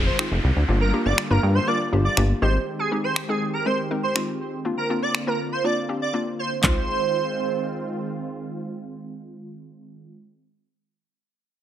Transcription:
Already playing: F1 D#3 G#3 C4 F4, downlifter
0.06 C5
0.19 C4 D#4 F4 G#4, finger snap
0.31 F1
0.44 C2
0.56 D2
0.68 G1 D3 G3 A#3 D4 F4 G4
0.81 A#4
0.93 A#3 D4 F4 G4
1.05 G1 D5
1.18 finger snap
1.30 G1 A#3 D4 F4 A#4
1.43 G2
1.55 C5
1.67 A#3 D4 F4 A#4 D5
1.92 G1 A#3 D4 F4 G4
2.05 D5
2.17 G1 A#3 D4 F4 G4, finger snap
2.42 G#1 D#3 G#3 C4 D#4 G4 C5
2.79 G#4
2.91 G#3 C4 D#4 G4
3.04 C5
3.16 finger snap
3.29 G#3 C4 D#4 G#4
3.53 A#4
3.66 G#3 C4 D#4 A#4 C5
3.91 G#3 C4 D#4 A#4
4.03 C5
4.15 G#3 C4 D#4 F4, finger snap
4.65 D3 A#3 C4 D4 F4
4.77 A#4
4.90 A#3 C4 D4 F4
5.02 D5
5.15 finger snap
5.27 A#3 C4 D4 F4 A#4
5.52 C5
5.64 A#3 C4 D4 F4 D5
5.89 A#3 C4 D4 G4
6.02 D5
6.13 A#3 C4 D4 F4
6.39 C5
6.62 D#3 G#3 C4 D#4 F4 C5, kick, clap, floor tom
6.66 F4

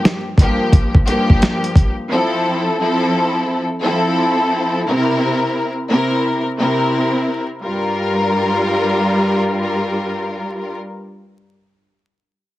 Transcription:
Already playing: G2 F3 A#3 G4
0.05 snare, closed hi-hat
0.38 G2 F3 A#3 G4, kick, closed hi-hat
0.73 kick, closed hi-hat
0.95 kick
1.05 G2 F3 A#3 G4, closed hi-hat
1.30 kick
1.42 snare, closed hi-hat
1.64 closed hi-hat
1.76 kick, closed hi-hat
2.10 F3 C4 E4 A4
2.79 F3 C4 E4 A4
3.82 F3 C4 E4 A4
4.87 C3 C4 E4 A#4
5.89 C3 C4 E4 A#4
6.58 C3 C4 E4 A#4
7.63 G2 G3 F4 A#4

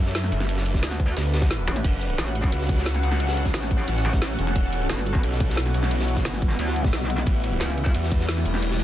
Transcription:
Already playing: F#2 D4 A4 B4 F#5
0.06 snare, shaker
0.15 snare, closed hi-hat, ride, shaker
0.23 snare
0.32 F#1, open hi-hat, ride, shaker
0.40 snare, shaker
0.49 closed hi-hat, ride, shaker
0.57 snare, shaker
0.66 closed hi-hat, ride
0.74 kick, snare
0.82 D2, snare, closed hi-hat, ride, shaker
0.91 snare, closed hi-hat
0.99 kick, closed hi-hat, ride
1.08 closed hi-hat, ride, shaker
1.17 D2, snare, closed hi-hat, ride, shaker
1.25 ride, shaker
1.34 snare, closed hi-hat, ride
1.41 kick, snare, ride, shaker
1.51 snare, closed hi-hat, ride, shaker
1.59 ride
1.67 A1, snare, open hi-hat, ride, shaker
1.76 snare, closed hi-hat, ride, shaker
1.84 F#1 F#3 C#4 F#4, kick, closed hi-hat, ride, crash, shaker
1.99 A4, closed hi-hat, ride
2.10 ride
2.18 A1, snare, closed hi-hat, shaker
2.27 snare, closed hi-hat, ride
2.35 closed hi-hat, ride
2.44 kick, closed hi-hat
2.52 C#2, closed hi-hat, ride, shaker
2.61 snare, shaker
2.69 kick, closed hi-hat, ride
2.78 snare, shaker
2.86 snare, closed hi-hat, ride, shaker
2.95 snare
3.03 C#2, open hi-hat, ride, shaker
3.12 snare, shaker
3.19 closed hi-hat, ride, shaker
3.28 snare
3.37 closed hi-hat, ride
3.45 kick, snare
3.54 A1, snare, closed hi-hat, ride, shaker
3.62 snare, closed hi-hat
3.71 kick, closed hi-hat, ride
3.79 closed hi-hat, ride
3.88 A1, closed hi-hat, ride, shaker
3.96 snare, shaker
4.05 A1, closed hi-hat, ride
4.13 kick, snare, shaker
4.21 A1, snare, closed hi-hat, ride, shaker
4.30 snare
4.38 E1, open hi-hat, ride, shaker
4.47 snare, ride, shaker
4.56 E1 E3 B3 E4 F#4, kick, closed hi-hat, ride, shaker
4.73 closed hi-hat, ride
4.81 ride
4.89 G1 G3, snare, closed hi-hat, shaker
4.98 snare, closed hi-hat, ride
5.06 closed hi-hat, ride
5.15 kick, closed hi-hat
5.23 B1, closed hi-hat, ride, shaker
5.32 snare, shaker
5.40 kick, closed hi-hat, ride
5.49 snare, shaker
5.56 snare, closed hi-hat, ride, shaker
5.66 snare
5.74 B1, open hi-hat, ride, shaker
5.82 snare, shaker
5.91 closed hi-hat, ride, shaker
6.00 snare
6.08 closed hi-hat, ride
6.16 kick, snare
6.25 G1, snare, closed hi-hat, ride, shaker
6.34 snare, closed hi-hat
6.42 kick, closed hi-hat, ride
6.50 snare, closed hi-hat
6.59 D2, closed hi-hat, ride, shaker
6.68 snare, shaker
6.76 closed hi-hat, ride
6.84 kick, snare, shaker
6.93 B1, snare, closed hi-hat, ride, shaker
7.01 snare
7.10 open hi-hat, ride, shaker
7.18 snare, closed hi-hat, ride, shaker
7.26 A1 A3 C#4 E4 B4, kick, closed hi-hat, ride, shaker
7.44 closed hi-hat, ride
7.52 ride
7.60 C#2 E5, snare, closed hi-hat, ride, shaker
7.69 snare, closed hi-hat, ride
7.78 A4, closed hi-hat, ride
7.86 kick, closed hi-hat
7.94 E2, closed hi-hat, ride, shaker
8.03 snare, shaker
8.12 kick, closed hi-hat, ride
8.20 snare, shaker
8.29 snare, closed hi-hat, shaker
8.37 snare
8.46 E1, open hi-hat, ride, shaker
8.54 snare, shaker
8.62 closed hi-hat, ride, shaker
8.71 snare
8.79 closed hi-hat, ride

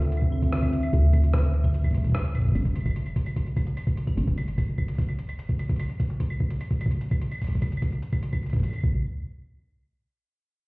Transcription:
Already playing: D2 D3 C4 F4 E5
0.02 closed hi-hat
0.12 closed hi-hat
0.17 claves
0.22 kick
0.32 claves
0.42 kick, closed hi-hat
0.53 cross-stick, closed hi-hat
0.63 kick, claves
0.68 closed hi-hat
0.73 closed hi-hat
0.83 closed hi-hat, claves
0.93 D2, kick, closed hi-hat
1.13 kick, closed hi-hat, claves
1.23 closed hi-hat
1.34 kick, cross-stick, closed hi-hat
1.44 closed hi-hat
1.54 closed hi-hat
1.64 kick, closed hi-hat, claves
1.74 closed hi-hat
1.84 kick, closed hi-hat, claves
1.91 kick, closed hi-hat
1.98 kick
2.04 kick, closed hi-hat
2.07 kick
2.10 kick
2.12 kick, cross-stick, closed hi-hat, claves
2.25 closed hi-hat
2.35 kick, closed hi-hat, claves
2.38 kick
2.42 kick
2.45 kick
2.48 kick
2.52 G1, kick, closed hi-hat, claves
2.65 kick, closed hi-hat
2.76 closed hi-hat, claves
2.81 claves
2.86 kick, closed hi-hat, claves
2.91 claves
2.96 closed hi-hat
3.06 closed hi-hat, claves
3.16 kick, closed hi-hat
3.26 closed hi-hat, claves
3.36 kick, closed hi-hat
3.46 closed hi-hat
3.57 kick, closed hi-hat, claves
3.67 closed hi-hat
3.77 closed hi-hat, claves
3.87 kick, closed hi-hat
3.97 closed hi-hat
4.07 kick, closed hi-hat, claves
4.17 G1, closed hi-hat
4.27 kick, closed hi-hat
4.38 closed hi-hat, claves
4.48 closed hi-hat
4.58 kick, closed hi-hat, claves
4.78 kick, claves
4.88 closed hi-hat
4.95 closed hi-hat
4.98 kick, closed hi-hat
5.02 closed hi-hat
5.09 closed hi-hat, claves
5.19 closed hi-hat
5.29 closed hi-hat, claves
5.39 closed hi-hat
5.49 kick, closed hi-hat
5.59 closed hi-hat, claves
5.69 kick, closed hi-hat
5.76 closed hi-hat
5.79 closed hi-hat, claves
5.83 closed hi-hat
5.90 closed hi-hat
6.00 kick, closed hi-hat
6.10 closed hi-hat
6.20 kick, closed hi-hat
6.30 claves
6.40 kick
6.50 closed hi-hat
6.61 closed hi-hat, claves
6.71 kick, closed hi-hat
6.81 closed hi-hat, claves
6.86 kick
6.91 closed hi-hat
7.01 closed hi-hat
7.11 kick, closed hi-hat, claves
7.21 closed hi-hat
7.32 closed hi-hat, claves
7.35 claves
7.38 kick, closed hi-hat, claves
7.44 closed hi-hat
7.47 kick, closed hi-hat
7.49 closed hi-hat
7.52 closed hi-hat
7.54 kick, closed hi-hat
7.57 closed hi-hat
7.59 kick, closed hi-hat
7.62 closed hi-hat, claves
7.65 closed hi-hat
7.67 closed hi-hat
7.70 closed hi-hat
7.72 closed hi-hat
7.77 claves
7.82 kick, closed hi-hat
7.92 closed hi-hat
8.02 closed hi-hat
8.13 kick, closed hi-hat, claves
8.23 closed hi-hat
8.33 kick, closed hi-hat, claves
8.43 closed hi-hat
8.46 closed hi-hat
8.50 closed hi-hat
8.53 kick, closed hi-hat
8.56 kick
8.60 kick, closed hi-hat, claves
8.66 claves
8.68 claves
8.71 closed hi-hat, claves
8.73 claves
8.76 claves
8.78 claves
8.81 kick, claves

